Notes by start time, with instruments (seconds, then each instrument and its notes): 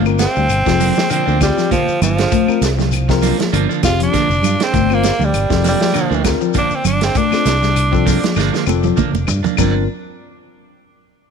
Already playing: fingered electric bass G1, clean electric guitar A3
0.05 tine electric piano C4 F4 A#4, muted clean electric guitar stroke, claves, shekere
0.19 tenor saxophone C4, muted clean electric guitar stroke, snare, closed hi-hat, high conga, shekere
0.35 fingered electric bass D2, clean electric guitar G3, muted clean electric guitar stroke, shekere
0.49 fingered electric bass G1, closed hi-hat, high conga, claves, shekere
0.66 fingered electric bass F1, clean electric guitar F3, tine electric piano C4 F4 A4, muted clean electric guitar stroke, kick, snare, shekere
0.79 clean electric guitar F3 A#3 D4, open hi-hat, low conga, shekere
0.96 clean electric guitar F3, muted clean electric guitar stroke, snare, high conga, shekere
1.09 clean electric guitar D3 F3 A#3 D4, tenor saxophone C4, closed hi-hat, claves, shekere
1.26 fingered electric bass D2, clean electric guitar D3 F3 A#3 D4, shekere
1.41 tenor saxophone G3, tine electric piano C4 F4 G4, kick, snare, closed hi-hat, high conga, claves, shekere
1.57 clean electric guitar F3, snare, shekere
1.71 clean electric guitar D3 F3 A#3, tenor saxophone F3, kick, closed hi-hat, high conga, shekere
1.87 muted clean electric guitar stroke, muted fingered electric bass stroke, shekere
2.01 fingered electric bass G1, tenor saxophone F3, muted clean electric guitar stroke, closed hi-hat, high conga, low conga, claves, shekere
2.17 clean electric guitar A#3 D4, snare, closed hi-hat, shekere
2.32 clean electric guitar A3, tine electric piano F4 A#4, kick, closed hi-hat, high conga, shekere
2.47 tine electric piano C4 F4 A#4, muted clean electric guitar stroke, muted fingered electric bass stroke, claves, shekere
2.61 fingered electric bass C2, muted clean electric guitar stroke, snare, closed hi-hat, high conga, shekere
2.78 clean electric guitar G3, muted clean electric guitar stroke, snare, low conga, shekere
2.91 closed hi-hat, high conga, claves, shekere
3.08 clean electric guitar F3, tine electric piano C4 F4 A#4, muted clean electric guitar stroke, kick, snare, shekere
3.22 clean electric guitar F3 A#3 D4, snare, open hi-hat, low conga, shekere
3.39 clean electric guitar F3, muted clean electric guitar stroke, snare, closed hi-hat, high conga, shekere
3.53 fingered electric bass G1, clean electric guitar D3 F3 A#3 D4, closed hi-hat, claves, shekere
3.69 clean electric guitar D3 F3 A#3 D4, shekere
3.83 fingered electric bass F1, tine electric piano C4 F4 G4, tenor saxophone F4, muted clean electric guitar stroke, kick, snare, closed hi-hat, high conga, claves, shekere
4.00 clean electric guitar F3, tenor saxophone D4, closed hi-hat, shekere
4.13 clean electric guitar D3 F3 A#3 D4, kick, snare, closed hi-hat, high conga, shekere
4.29 fingered electric bass F1, muted clean electric guitar stroke, high conga, shekere
4.42 fingered electric bass G2, muted clean electric guitar stroke, closed hi-hat, low conga, claves, shekere
4.59 clean electric guitar A#3 D4, tenor saxophone C4, snare, closed hi-hat, shekere
4.72 fingered electric bass G1, clean electric guitar A3, tine electric piano F4 A#4, kick, closed hi-hat, high conga, shekere
4.90 tine electric piano C4 F4 C5, muted clean electric guitar stroke, claves, shekere
4.94 tenor saxophone A#3
5.04 muted clean electric guitar stroke, snare, closed hi-hat, high conga, shekere
5.19 fingered electric bass D2, clean electric guitar G3, muted clean electric guitar stroke, low conga, shekere
5.25 tenor saxophone G3
5.34 fingered electric bass G1, closed hi-hat, high conga, claves, shekere
5.50 fingered electric bass F1, clean electric guitar F3, tine electric piano C4 F4 A4, muted clean electric guitar stroke, kick, snare, shekere
5.64 clean electric guitar F3 A#3 D4, snare, open hi-hat, low conga, shekere
5.68 tenor saxophone G3
5.80 clean electric guitar F3, muted clean electric guitar stroke, snare, high conga, shekere
5.93 clean electric guitar D3 F3 A#3 D4, closed hi-hat, high conga, claves, shekere
6.10 fingered electric bass D2, clean electric guitar D3 F3 A#3 D4, shekere
6.24 tine electric piano C4 F4 A#4, muted clean electric guitar stroke, kick, snare, closed hi-hat, high conga, claves, shekere
6.41 clean electric guitar F3, shekere
6.54 clean electric guitar D3 F3 A#3 D4, kick, closed hi-hat, high conga, shekere
6.58 tenor saxophone D4
6.70 muted clean electric guitar stroke, muted fingered electric bass stroke, shekere
6.75 tenor saxophone C4
6.84 fingered electric bass G1, tenor saxophone D4, muted clean electric guitar stroke, closed hi-hat, low conga, claves, shekere
7.00 clean electric guitar A#3 D4, tenor saxophone C4, snare, closed hi-hat, shekere
7.15 clean electric guitar A3, tenor saxophone D4, tine electric piano F4 A#4, kick, closed hi-hat, shekere
7.31 tine electric piano C4 F4 A4, muted clean electric guitar stroke, muted fingered electric bass stroke, snare, claves, shekere
7.45 fingered electric bass C2, muted clean electric guitar stroke, snare, closed hi-hat, high conga, shekere
7.61 clean electric guitar G3, muted clean electric guitar stroke, snare, shekere
7.76 closed hi-hat, high conga, claves, shekere
7.92 clean electric guitar F3, tine electric piano C4 F4 A4, muted clean electric guitar stroke, kick, shekere
8.05 clean electric guitar F3 A#3 D4, kick, snare, open hi-hat, low conga, shekere
8.22 clean electric guitar F3, muted clean electric guitar stroke, snare, closed hi-hat, high conga, shekere
8.36 fingered electric bass G1, clean electric guitar D3 F3 A#3 D4, snare, claves, shekere
8.52 clean electric guitar D3 F3 A#3, muted clean electric guitar stroke, snare, shekere
8.66 fingered electric bass F1, tine electric piano C4 F4 A4, muted clean electric guitar stroke, high conga, claves, shekere
8.83 clean electric guitar F3, high tom, shekere
8.96 clean electric guitar D3 F3 A#3 D4, kick, mid tom, high conga, shekere
9.13 fingered electric bass F1, muted clean electric guitar stroke, high conga, shekere
9.27 fingered electric bass G2, muted clean electric guitar stroke, floor tom, claves, shekere
9.43 clean electric guitar A#3 D4, floor tom, low conga, shekere
9.56 fingered electric bass G1, clean electric guitar G2 D4, tine electric piano C4 F4 A#4, muted clean electric guitar stroke, kick, crash, low conga, claves, shekere